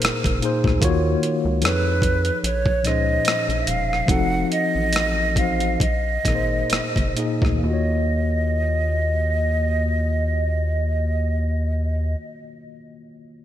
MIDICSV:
0, 0, Header, 1, 5, 480
1, 0, Start_track
1, 0, Tempo, 807537
1, 484, Time_signature, 4, 2, 24, 8
1, 1929, Tempo, 852273
1, 3369, Tempo, 910470
1, 4329, Tempo, 941915
1, 7297, End_track
2, 0, Start_track
2, 0, Title_t, "Flute"
2, 0, Program_c, 0, 73
2, 0, Note_on_c, 0, 70, 70
2, 227, Note_off_c, 0, 70, 0
2, 970, Note_on_c, 0, 71, 77
2, 1423, Note_off_c, 0, 71, 0
2, 1457, Note_on_c, 0, 73, 74
2, 1701, Note_on_c, 0, 75, 84
2, 1710, Note_off_c, 0, 73, 0
2, 2140, Note_on_c, 0, 76, 65
2, 2148, Note_off_c, 0, 75, 0
2, 2171, Note_on_c, 0, 77, 82
2, 2179, Note_off_c, 0, 76, 0
2, 2407, Note_on_c, 0, 78, 91
2, 2416, Note_off_c, 0, 77, 0
2, 2641, Note_off_c, 0, 78, 0
2, 2645, Note_on_c, 0, 75, 93
2, 3135, Note_on_c, 0, 77, 81
2, 3144, Note_off_c, 0, 75, 0
2, 3376, Note_off_c, 0, 77, 0
2, 3378, Note_on_c, 0, 75, 70
2, 4067, Note_off_c, 0, 75, 0
2, 4340, Note_on_c, 0, 75, 70
2, 6641, Note_off_c, 0, 75, 0
2, 7297, End_track
3, 0, Start_track
3, 0, Title_t, "Tine electric piano"
3, 0, Program_c, 1, 4
3, 0, Control_c, 1, 64, 127
3, 0, Note_on_c, 1, 46, 68
3, 0, Note_on_c, 1, 58, 57
3, 0, Note_on_c, 1, 63, 61
3, 0, Note_on_c, 1, 68, 58
3, 0, Note_on_c, 1, 70, 58
3, 0, Note_on_c, 1, 72, 72
3, 184, Note_off_c, 1, 46, 0
3, 188, Note_off_c, 1, 58, 0
3, 191, Note_off_c, 1, 63, 0
3, 195, Note_off_c, 1, 68, 0
3, 218, Note_off_c, 1, 72, 0
3, 240, Note_on_c, 1, 46, 77
3, 248, Note_on_c, 1, 58, 71
3, 255, Note_on_c, 1, 63, 73
3, 262, Note_on_c, 1, 68, 76
3, 270, Note_on_c, 1, 72, 87
3, 451, Note_off_c, 1, 46, 0
3, 454, Note_off_c, 1, 58, 0
3, 458, Note_off_c, 1, 63, 0
3, 462, Note_off_c, 1, 68, 0
3, 465, Note_off_c, 1, 72, 0
3, 475, Note_on_c, 1, 51, 103
3, 483, Note_on_c, 1, 58, 87
3, 490, Note_on_c, 1, 65, 93
3, 492, Control_c, 1, 64, 0
3, 494, Note_off_c, 1, 70, 0
3, 498, Note_on_c, 1, 66, 95
3, 503, Note_on_c, 1, 73, 109
3, 588, Control_c, 1, 64, 127
3, 954, Note_on_c, 1, 53, 64
3, 957, Note_off_c, 1, 51, 0
3, 960, Note_off_c, 1, 58, 0
3, 962, Note_on_c, 1, 63, 59
3, 964, Note_off_c, 1, 65, 0
3, 968, Note_off_c, 1, 66, 0
3, 969, Control_c, 1, 64, 0
3, 970, Note_on_c, 1, 68, 61
3, 971, Note_off_c, 1, 73, 0
3, 977, Note_on_c, 1, 69, 58
3, 986, Note_on_c, 1, 73, 75
3, 1061, Control_c, 1, 64, 127
3, 1376, Note_off_c, 1, 53, 0
3, 1380, Note_off_c, 1, 63, 0
3, 1384, Note_off_c, 1, 68, 0
3, 1387, Note_off_c, 1, 69, 0
3, 1392, Note_off_c, 1, 73, 0
3, 1448, Control_c, 1, 64, 0
3, 1535, Control_c, 1, 64, 127
3, 1682, Note_on_c, 1, 46, 65
3, 1687, Note_on_c, 1, 53, 59
3, 1692, Note_on_c, 1, 61, 56
3, 1700, Note_on_c, 1, 63, 58
3, 1707, Note_on_c, 1, 68, 57
3, 1710, Note_on_c, 1, 72, 74
3, 2306, Note_off_c, 1, 46, 0
3, 2308, Note_off_c, 1, 53, 0
3, 2310, Note_off_c, 1, 61, 0
3, 2314, Note_off_c, 1, 63, 0
3, 2317, Note_off_c, 1, 68, 0
3, 2319, Note_off_c, 1, 72, 0
3, 2391, Note_on_c, 1, 53, 87
3, 2399, Note_on_c, 1, 60, 72
3, 2404, Note_on_c, 1, 63, 74
3, 2407, Control_c, 1, 64, 0
3, 2411, Note_on_c, 1, 66, 70
3, 2419, Note_on_c, 1, 69, 89
3, 2509, Control_c, 1, 64, 127
3, 3023, Note_off_c, 1, 53, 0
3, 3027, Note_off_c, 1, 60, 0
3, 3029, Note_off_c, 1, 63, 0
3, 3033, Note_off_c, 1, 66, 0
3, 3037, Note_off_c, 1, 69, 0
3, 3117, Note_on_c, 1, 53, 56
3, 3123, Note_on_c, 1, 60, 48
3, 3130, Note_on_c, 1, 63, 49
3, 3137, Note_on_c, 1, 66, 52
3, 3145, Note_on_c, 1, 72, 60
3, 3367, Note_off_c, 1, 53, 0
3, 3370, Note_off_c, 1, 60, 0
3, 3373, Note_off_c, 1, 63, 0
3, 3376, Note_off_c, 1, 66, 0
3, 3377, Control_c, 1, 64, 0
3, 3380, Note_off_c, 1, 72, 0
3, 3472, Control_c, 1, 64, 127
3, 3597, Note_on_c, 1, 46, 58
3, 3603, Note_on_c, 1, 58, 52
3, 3611, Note_on_c, 1, 63, 53
3, 3617, Note_on_c, 1, 68, 56
3, 3625, Note_on_c, 1, 70, 53
3, 3658, Note_off_c, 1, 70, 0
3, 3659, Note_on_c, 1, 72, 71
3, 4018, Note_off_c, 1, 46, 0
3, 4021, Note_off_c, 1, 58, 0
3, 4025, Note_off_c, 1, 63, 0
3, 4027, Note_off_c, 1, 68, 0
3, 4049, Note_off_c, 1, 72, 0
3, 4079, Note_on_c, 1, 46, 73
3, 4086, Note_on_c, 1, 58, 68
3, 4094, Note_on_c, 1, 63, 68
3, 4099, Note_on_c, 1, 68, 64
3, 4106, Note_on_c, 1, 75, 77
3, 4284, Note_on_c, 1, 51, 62
3, 4295, Note_off_c, 1, 46, 0
3, 4299, Note_off_c, 1, 58, 0
3, 4303, Note_off_c, 1, 63, 0
3, 4305, Note_off_c, 1, 68, 0
3, 4309, Note_off_c, 1, 75, 0
3, 4309, Note_on_c, 1, 58, 64
3, 4335, Note_on_c, 1, 65, 60
3, 4336, Control_c, 1, 64, 0
3, 4360, Note_on_c, 1, 66, 61
3, 4385, Note_on_c, 1, 73, 73
3, 4413, Control_c, 1, 64, 127
3, 6695, Note_off_c, 1, 51, 0
3, 6720, Note_off_c, 1, 58, 0
3, 6746, Note_off_c, 1, 65, 0
3, 6770, Note_off_c, 1, 66, 0
3, 6795, Note_off_c, 1, 73, 0
3, 7297, End_track
4, 0, Start_track
4, 0, Title_t, "Analog synth bass"
4, 0, Program_c, 2, 38
4, 17, Note_on_c, 2, 30, 46
4, 69, Note_off_c, 2, 30, 0
4, 147, Note_on_c, 2, 30, 76
4, 233, Note_off_c, 2, 30, 0
4, 385, Note_on_c, 2, 38, 90
4, 471, Note_off_c, 2, 38, 0
4, 489, Note_on_c, 2, 39, 102
4, 689, Note_off_c, 2, 39, 0
4, 861, Note_on_c, 2, 37, 94
4, 965, Note_on_c, 2, 41, 89
4, 974, Note_off_c, 2, 37, 0
4, 1372, Note_off_c, 2, 41, 0
4, 1448, Note_on_c, 2, 34, 92
4, 1690, Note_on_c, 2, 37, 78
4, 1699, Note_off_c, 2, 34, 0
4, 1896, Note_off_c, 2, 37, 0
4, 2065, Note_on_c, 2, 34, 85
4, 2150, Note_off_c, 2, 34, 0
4, 2169, Note_on_c, 2, 28, 76
4, 2367, Note_off_c, 2, 28, 0
4, 2403, Note_on_c, 2, 29, 98
4, 2604, Note_off_c, 2, 29, 0
4, 2778, Note_on_c, 2, 33, 83
4, 3349, Note_off_c, 2, 33, 0
4, 3371, Note_on_c, 2, 34, 84
4, 3570, Note_off_c, 2, 34, 0
4, 3606, Note_on_c, 2, 32, 81
4, 3807, Note_off_c, 2, 32, 0
4, 3847, Note_on_c, 2, 30, 41
4, 3900, Note_off_c, 2, 30, 0
4, 3980, Note_on_c, 2, 30, 74
4, 4069, Note_off_c, 2, 30, 0
4, 4223, Note_on_c, 2, 38, 92
4, 4314, Note_off_c, 2, 38, 0
4, 4334, Note_on_c, 2, 39, 94
4, 6638, Note_off_c, 2, 39, 0
4, 7297, End_track
5, 0, Start_track
5, 0, Title_t, "Drums"
5, 10, Note_on_c, 9, 42, 73
5, 28, Note_on_c, 9, 37, 105
5, 70, Note_off_c, 9, 42, 0
5, 87, Note_off_c, 9, 37, 0
5, 145, Note_on_c, 9, 36, 85
5, 152, Note_on_c, 9, 42, 41
5, 204, Note_off_c, 9, 36, 0
5, 212, Note_off_c, 9, 42, 0
5, 252, Note_on_c, 9, 42, 63
5, 312, Note_off_c, 9, 42, 0
5, 381, Note_on_c, 9, 36, 70
5, 401, Note_on_c, 9, 37, 31
5, 440, Note_off_c, 9, 36, 0
5, 461, Note_off_c, 9, 37, 0
5, 486, Note_on_c, 9, 36, 101
5, 490, Note_on_c, 9, 42, 74
5, 545, Note_off_c, 9, 36, 0
5, 550, Note_off_c, 9, 42, 0
5, 732, Note_on_c, 9, 42, 56
5, 791, Note_off_c, 9, 42, 0
5, 961, Note_on_c, 9, 42, 69
5, 982, Note_on_c, 9, 37, 99
5, 1021, Note_off_c, 9, 42, 0
5, 1041, Note_off_c, 9, 37, 0
5, 1200, Note_on_c, 9, 36, 80
5, 1208, Note_on_c, 9, 42, 59
5, 1260, Note_off_c, 9, 36, 0
5, 1268, Note_off_c, 9, 42, 0
5, 1336, Note_on_c, 9, 42, 40
5, 1395, Note_off_c, 9, 42, 0
5, 1452, Note_on_c, 9, 42, 76
5, 1512, Note_off_c, 9, 42, 0
5, 1579, Note_on_c, 9, 36, 75
5, 1638, Note_off_c, 9, 36, 0
5, 1691, Note_on_c, 9, 42, 51
5, 1706, Note_on_c, 9, 37, 30
5, 1751, Note_off_c, 9, 42, 0
5, 1766, Note_off_c, 9, 37, 0
5, 1931, Note_on_c, 9, 42, 68
5, 1948, Note_on_c, 9, 37, 100
5, 1987, Note_off_c, 9, 42, 0
5, 2004, Note_off_c, 9, 37, 0
5, 2071, Note_on_c, 9, 42, 35
5, 2128, Note_off_c, 9, 42, 0
5, 2169, Note_on_c, 9, 42, 63
5, 2226, Note_off_c, 9, 42, 0
5, 2315, Note_on_c, 9, 37, 28
5, 2371, Note_off_c, 9, 37, 0
5, 2400, Note_on_c, 9, 36, 103
5, 2406, Note_on_c, 9, 42, 75
5, 2457, Note_off_c, 9, 36, 0
5, 2462, Note_off_c, 9, 42, 0
5, 2645, Note_on_c, 9, 42, 54
5, 2701, Note_off_c, 9, 42, 0
5, 2876, Note_on_c, 9, 42, 64
5, 2895, Note_on_c, 9, 37, 91
5, 2932, Note_off_c, 9, 42, 0
5, 2951, Note_off_c, 9, 37, 0
5, 3120, Note_on_c, 9, 36, 71
5, 3124, Note_on_c, 9, 42, 61
5, 3176, Note_off_c, 9, 36, 0
5, 3181, Note_off_c, 9, 42, 0
5, 3258, Note_on_c, 9, 42, 38
5, 3314, Note_off_c, 9, 42, 0
5, 3369, Note_on_c, 9, 36, 83
5, 3375, Note_on_c, 9, 42, 69
5, 3421, Note_off_c, 9, 36, 0
5, 3428, Note_off_c, 9, 42, 0
5, 3604, Note_on_c, 9, 36, 70
5, 3607, Note_on_c, 9, 42, 55
5, 3620, Note_on_c, 9, 37, 27
5, 3657, Note_off_c, 9, 36, 0
5, 3660, Note_off_c, 9, 42, 0
5, 3673, Note_off_c, 9, 37, 0
5, 3841, Note_on_c, 9, 42, 69
5, 3857, Note_on_c, 9, 37, 94
5, 3894, Note_off_c, 9, 42, 0
5, 3910, Note_off_c, 9, 37, 0
5, 3979, Note_on_c, 9, 36, 76
5, 3986, Note_on_c, 9, 42, 35
5, 4032, Note_off_c, 9, 36, 0
5, 4039, Note_off_c, 9, 42, 0
5, 4088, Note_on_c, 9, 42, 65
5, 4141, Note_off_c, 9, 42, 0
5, 4221, Note_on_c, 9, 36, 66
5, 4236, Note_on_c, 9, 37, 27
5, 4274, Note_off_c, 9, 36, 0
5, 4289, Note_off_c, 9, 37, 0
5, 7297, End_track
0, 0, End_of_file